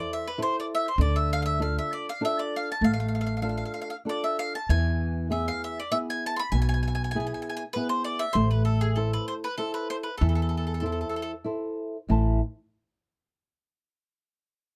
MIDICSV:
0, 0, Header, 1, 4, 480
1, 0, Start_track
1, 0, Key_signature, 0, "minor"
1, 0, Tempo, 612870
1, 775, Time_signature, 3, 2, 24, 8
1, 7018, Tempo, 621762
1, 11494, End_track
2, 0, Start_track
2, 0, Title_t, "Mandolin"
2, 0, Program_c, 0, 25
2, 0, Note_on_c, 0, 74, 73
2, 83, Note_off_c, 0, 74, 0
2, 103, Note_on_c, 0, 76, 83
2, 202, Note_off_c, 0, 76, 0
2, 216, Note_on_c, 0, 71, 78
2, 306, Note_off_c, 0, 71, 0
2, 333, Note_on_c, 0, 72, 87
2, 432, Note_off_c, 0, 72, 0
2, 467, Note_on_c, 0, 74, 80
2, 507, Note_off_c, 0, 74, 0
2, 585, Note_on_c, 0, 76, 92
2, 673, Note_off_c, 0, 76, 0
2, 690, Note_on_c, 0, 72, 77
2, 782, Note_off_c, 0, 72, 0
2, 791, Note_on_c, 0, 74, 91
2, 899, Note_off_c, 0, 74, 0
2, 908, Note_on_c, 0, 76, 74
2, 1019, Note_off_c, 0, 76, 0
2, 1041, Note_on_c, 0, 77, 98
2, 1105, Note_off_c, 0, 77, 0
2, 1115, Note_on_c, 0, 77, 70
2, 1138, Note_off_c, 0, 77, 0
2, 1141, Note_on_c, 0, 76, 87
2, 1245, Note_off_c, 0, 76, 0
2, 1270, Note_on_c, 0, 77, 66
2, 1377, Note_off_c, 0, 77, 0
2, 1399, Note_on_c, 0, 76, 72
2, 1504, Note_off_c, 0, 76, 0
2, 1510, Note_on_c, 0, 74, 78
2, 1612, Note_off_c, 0, 74, 0
2, 1640, Note_on_c, 0, 77, 82
2, 1734, Note_off_c, 0, 77, 0
2, 1761, Note_on_c, 0, 76, 86
2, 1873, Note_off_c, 0, 76, 0
2, 1874, Note_on_c, 0, 74, 83
2, 1992, Note_off_c, 0, 74, 0
2, 2008, Note_on_c, 0, 77, 79
2, 2101, Note_off_c, 0, 77, 0
2, 2128, Note_on_c, 0, 81, 81
2, 2219, Note_off_c, 0, 81, 0
2, 2228, Note_on_c, 0, 77, 83
2, 2280, Note_off_c, 0, 77, 0
2, 2299, Note_on_c, 0, 77, 67
2, 2340, Note_off_c, 0, 77, 0
2, 2349, Note_on_c, 0, 77, 62
2, 2401, Note_off_c, 0, 77, 0
2, 2417, Note_on_c, 0, 77, 54
2, 2457, Note_off_c, 0, 77, 0
2, 2466, Note_on_c, 0, 77, 49
2, 2504, Note_off_c, 0, 77, 0
2, 2513, Note_on_c, 0, 77, 57
2, 2548, Note_off_c, 0, 77, 0
2, 2558, Note_on_c, 0, 77, 54
2, 2616, Note_off_c, 0, 77, 0
2, 2639, Note_on_c, 0, 77, 47
2, 2670, Note_off_c, 0, 77, 0
2, 2680, Note_on_c, 0, 77, 59
2, 2726, Note_off_c, 0, 77, 0
2, 2735, Note_on_c, 0, 77, 37
2, 2791, Note_off_c, 0, 77, 0
2, 2800, Note_on_c, 0, 77, 50
2, 2853, Note_off_c, 0, 77, 0
2, 2863, Note_on_c, 0, 77, 52
2, 2919, Note_off_c, 0, 77, 0
2, 2928, Note_on_c, 0, 77, 53
2, 2980, Note_off_c, 0, 77, 0
2, 2989, Note_on_c, 0, 77, 55
2, 3037, Note_off_c, 0, 77, 0
2, 3055, Note_on_c, 0, 77, 60
2, 3097, Note_off_c, 0, 77, 0
2, 3206, Note_on_c, 0, 74, 86
2, 3311, Note_off_c, 0, 74, 0
2, 3320, Note_on_c, 0, 76, 67
2, 3431, Note_off_c, 0, 76, 0
2, 3439, Note_on_c, 0, 77, 93
2, 3544, Note_off_c, 0, 77, 0
2, 3565, Note_on_c, 0, 81, 84
2, 3665, Note_off_c, 0, 81, 0
2, 3682, Note_on_c, 0, 80, 93
2, 4126, Note_off_c, 0, 80, 0
2, 4164, Note_on_c, 0, 76, 62
2, 4273, Note_off_c, 0, 76, 0
2, 4292, Note_on_c, 0, 77, 77
2, 4411, Note_off_c, 0, 77, 0
2, 4418, Note_on_c, 0, 76, 75
2, 4526, Note_off_c, 0, 76, 0
2, 4539, Note_on_c, 0, 74, 72
2, 4633, Note_off_c, 0, 74, 0
2, 4633, Note_on_c, 0, 76, 94
2, 4673, Note_off_c, 0, 76, 0
2, 4777, Note_on_c, 0, 80, 89
2, 4893, Note_off_c, 0, 80, 0
2, 4906, Note_on_c, 0, 81, 98
2, 4979, Note_off_c, 0, 81, 0
2, 4984, Note_on_c, 0, 84, 75
2, 5002, Note_off_c, 0, 84, 0
2, 5009, Note_on_c, 0, 83, 97
2, 5102, Note_off_c, 0, 83, 0
2, 5105, Note_on_c, 0, 80, 89
2, 5161, Note_off_c, 0, 80, 0
2, 5182, Note_on_c, 0, 80, 72
2, 5229, Note_off_c, 0, 80, 0
2, 5238, Note_on_c, 0, 80, 73
2, 5269, Note_off_c, 0, 80, 0
2, 5278, Note_on_c, 0, 80, 53
2, 5338, Note_off_c, 0, 80, 0
2, 5348, Note_on_c, 0, 80, 54
2, 5376, Note_off_c, 0, 80, 0
2, 5386, Note_on_c, 0, 80, 54
2, 5433, Note_off_c, 0, 80, 0
2, 5442, Note_on_c, 0, 80, 63
2, 5500, Note_off_c, 0, 80, 0
2, 5515, Note_on_c, 0, 80, 57
2, 5561, Note_off_c, 0, 80, 0
2, 5570, Note_on_c, 0, 80, 70
2, 5622, Note_off_c, 0, 80, 0
2, 5639, Note_on_c, 0, 80, 45
2, 5682, Note_off_c, 0, 80, 0
2, 5691, Note_on_c, 0, 80, 55
2, 5741, Note_off_c, 0, 80, 0
2, 5751, Note_on_c, 0, 80, 48
2, 5803, Note_off_c, 0, 80, 0
2, 5812, Note_on_c, 0, 80, 61
2, 5861, Note_off_c, 0, 80, 0
2, 5871, Note_on_c, 0, 80, 64
2, 5916, Note_off_c, 0, 80, 0
2, 5926, Note_on_c, 0, 80, 80
2, 5972, Note_off_c, 0, 80, 0
2, 6056, Note_on_c, 0, 71, 88
2, 6179, Note_off_c, 0, 71, 0
2, 6182, Note_on_c, 0, 72, 86
2, 6298, Note_off_c, 0, 72, 0
2, 6301, Note_on_c, 0, 74, 94
2, 6417, Note_on_c, 0, 76, 97
2, 6423, Note_off_c, 0, 74, 0
2, 6524, Note_on_c, 0, 72, 94
2, 6539, Note_off_c, 0, 76, 0
2, 6648, Note_off_c, 0, 72, 0
2, 6662, Note_on_c, 0, 71, 74
2, 6770, Note_off_c, 0, 71, 0
2, 6774, Note_on_c, 0, 69, 81
2, 6900, Note_off_c, 0, 69, 0
2, 6900, Note_on_c, 0, 68, 84
2, 7015, Note_on_c, 0, 69, 59
2, 7020, Note_off_c, 0, 68, 0
2, 7131, Note_off_c, 0, 69, 0
2, 7152, Note_on_c, 0, 71, 81
2, 7260, Note_off_c, 0, 71, 0
2, 7263, Note_on_c, 0, 72, 81
2, 7302, Note_off_c, 0, 72, 0
2, 7389, Note_on_c, 0, 71, 81
2, 7490, Note_off_c, 0, 71, 0
2, 7493, Note_on_c, 0, 69, 81
2, 7612, Note_off_c, 0, 69, 0
2, 7619, Note_on_c, 0, 71, 79
2, 7741, Note_off_c, 0, 71, 0
2, 7744, Note_on_c, 0, 72, 87
2, 7782, Note_off_c, 0, 72, 0
2, 7847, Note_on_c, 0, 71, 66
2, 7953, Note_off_c, 0, 71, 0
2, 7956, Note_on_c, 0, 69, 69
2, 8021, Note_off_c, 0, 69, 0
2, 8043, Note_on_c, 0, 69, 45
2, 8084, Note_off_c, 0, 69, 0
2, 8093, Note_on_c, 0, 69, 54
2, 8137, Note_off_c, 0, 69, 0
2, 8146, Note_on_c, 0, 69, 44
2, 8189, Note_off_c, 0, 69, 0
2, 8198, Note_on_c, 0, 69, 47
2, 8254, Note_off_c, 0, 69, 0
2, 8263, Note_on_c, 0, 69, 50
2, 8318, Note_off_c, 0, 69, 0
2, 8336, Note_on_c, 0, 69, 45
2, 8383, Note_off_c, 0, 69, 0
2, 8393, Note_on_c, 0, 69, 45
2, 8430, Note_off_c, 0, 69, 0
2, 8440, Note_on_c, 0, 69, 53
2, 8474, Note_off_c, 0, 69, 0
2, 8483, Note_on_c, 0, 69, 38
2, 8524, Note_off_c, 0, 69, 0
2, 8533, Note_on_c, 0, 69, 39
2, 8590, Note_off_c, 0, 69, 0
2, 8599, Note_on_c, 0, 69, 39
2, 8656, Note_off_c, 0, 69, 0
2, 8665, Note_on_c, 0, 69, 42
2, 8709, Note_off_c, 0, 69, 0
2, 8718, Note_on_c, 0, 69, 47
2, 8755, Note_off_c, 0, 69, 0
2, 8764, Note_on_c, 0, 69, 59
2, 8830, Note_off_c, 0, 69, 0
2, 11494, End_track
3, 0, Start_track
3, 0, Title_t, "Nylon-string guitar"
3, 0, Program_c, 1, 24
3, 0, Note_on_c, 1, 64, 52
3, 0, Note_on_c, 1, 69, 41
3, 0, Note_on_c, 1, 72, 48
3, 204, Note_off_c, 1, 64, 0
3, 207, Note_off_c, 1, 69, 0
3, 207, Note_off_c, 1, 72, 0
3, 298, Note_on_c, 1, 64, 55
3, 303, Note_on_c, 1, 69, 43
3, 303, Note_on_c, 1, 72, 62
3, 680, Note_off_c, 1, 64, 0
3, 681, Note_off_c, 1, 69, 0
3, 683, Note_off_c, 1, 72, 0
3, 779, Note_on_c, 1, 50, 75
3, 1239, Note_off_c, 1, 50, 0
3, 1250, Note_on_c, 1, 62, 46
3, 1254, Note_on_c, 1, 65, 45
3, 1254, Note_on_c, 1, 69, 59
3, 1633, Note_off_c, 1, 62, 0
3, 1634, Note_off_c, 1, 65, 0
3, 1635, Note_off_c, 1, 69, 0
3, 1730, Note_on_c, 1, 62, 52
3, 1734, Note_on_c, 1, 65, 46
3, 1736, Note_on_c, 1, 69, 55
3, 2113, Note_off_c, 1, 62, 0
3, 2116, Note_off_c, 1, 65, 0
3, 2116, Note_off_c, 1, 69, 0
3, 2206, Note_on_c, 1, 57, 58
3, 2674, Note_off_c, 1, 57, 0
3, 2677, Note_on_c, 1, 62, 46
3, 2682, Note_on_c, 1, 65, 41
3, 2686, Note_on_c, 1, 69, 52
3, 3071, Note_off_c, 1, 62, 0
3, 3072, Note_off_c, 1, 65, 0
3, 3076, Note_off_c, 1, 69, 0
3, 3172, Note_on_c, 1, 62, 44
3, 3179, Note_on_c, 1, 65, 40
3, 3183, Note_on_c, 1, 69, 48
3, 3565, Note_off_c, 1, 62, 0
3, 3569, Note_off_c, 1, 65, 0
3, 3570, Note_off_c, 1, 69, 0
3, 3677, Note_on_c, 1, 52, 62
3, 4140, Note_off_c, 1, 52, 0
3, 4150, Note_on_c, 1, 59, 42
3, 4153, Note_on_c, 1, 64, 42
3, 4157, Note_on_c, 1, 68, 52
3, 4533, Note_off_c, 1, 59, 0
3, 4533, Note_off_c, 1, 64, 0
3, 4537, Note_off_c, 1, 68, 0
3, 4632, Note_on_c, 1, 59, 45
3, 4633, Note_on_c, 1, 64, 42
3, 4638, Note_on_c, 1, 68, 50
3, 5013, Note_off_c, 1, 59, 0
3, 5013, Note_off_c, 1, 64, 0
3, 5016, Note_off_c, 1, 68, 0
3, 5122, Note_on_c, 1, 47, 69
3, 5577, Note_off_c, 1, 47, 0
3, 5600, Note_on_c, 1, 64, 46
3, 5601, Note_on_c, 1, 59, 44
3, 5607, Note_on_c, 1, 68, 57
3, 5974, Note_off_c, 1, 64, 0
3, 5975, Note_off_c, 1, 59, 0
3, 5979, Note_off_c, 1, 68, 0
3, 6077, Note_on_c, 1, 59, 52
3, 6079, Note_on_c, 1, 64, 44
3, 6086, Note_on_c, 1, 68, 54
3, 6454, Note_off_c, 1, 59, 0
3, 6454, Note_off_c, 1, 64, 0
3, 6459, Note_off_c, 1, 68, 0
3, 6546, Note_on_c, 1, 57, 72
3, 7008, Note_off_c, 1, 57, 0
3, 7021, Note_on_c, 1, 64, 51
3, 7026, Note_on_c, 1, 69, 46
3, 7028, Note_on_c, 1, 72, 60
3, 7402, Note_off_c, 1, 64, 0
3, 7403, Note_off_c, 1, 69, 0
3, 7406, Note_off_c, 1, 72, 0
3, 7493, Note_on_c, 1, 64, 49
3, 7499, Note_on_c, 1, 69, 47
3, 7503, Note_on_c, 1, 72, 50
3, 7879, Note_off_c, 1, 64, 0
3, 7882, Note_off_c, 1, 69, 0
3, 7884, Note_off_c, 1, 72, 0
3, 7982, Note_on_c, 1, 52, 64
3, 8444, Note_off_c, 1, 52, 0
3, 8454, Note_on_c, 1, 64, 47
3, 8461, Note_on_c, 1, 69, 44
3, 8463, Note_on_c, 1, 72, 52
3, 8846, Note_off_c, 1, 64, 0
3, 8848, Note_off_c, 1, 69, 0
3, 8850, Note_off_c, 1, 72, 0
3, 8935, Note_on_c, 1, 64, 47
3, 8943, Note_on_c, 1, 69, 40
3, 8948, Note_on_c, 1, 72, 52
3, 9329, Note_off_c, 1, 64, 0
3, 9334, Note_off_c, 1, 69, 0
3, 9335, Note_off_c, 1, 72, 0
3, 9430, Note_on_c, 1, 45, 51
3, 9436, Note_on_c, 1, 52, 48
3, 9439, Note_on_c, 1, 64, 44
3, 9441, Note_on_c, 1, 69, 45
3, 9445, Note_on_c, 1, 72, 49
3, 9448, Note_on_c, 1, 81, 57
3, 9664, Note_off_c, 1, 45, 0
3, 9667, Note_off_c, 1, 52, 0
3, 9668, Note_off_c, 1, 64, 0
3, 9670, Note_off_c, 1, 69, 0
3, 9670, Note_off_c, 1, 72, 0
3, 9673, Note_off_c, 1, 81, 0
3, 11494, End_track
4, 0, Start_track
4, 0, Title_t, "Upright bass"
4, 0, Program_c, 2, 32
4, 769, Note_on_c, 2, 38, 101
4, 1390, Note_off_c, 2, 38, 0
4, 2203, Note_on_c, 2, 33, 89
4, 2833, Note_off_c, 2, 33, 0
4, 3676, Note_on_c, 2, 40, 106
4, 4299, Note_off_c, 2, 40, 0
4, 5107, Note_on_c, 2, 35, 85
4, 5726, Note_off_c, 2, 35, 0
4, 6542, Note_on_c, 2, 33, 103
4, 7165, Note_off_c, 2, 33, 0
4, 7985, Note_on_c, 2, 40, 107
4, 8611, Note_off_c, 2, 40, 0
4, 9439, Note_on_c, 2, 33, 94
4, 9669, Note_off_c, 2, 33, 0
4, 11494, End_track
0, 0, End_of_file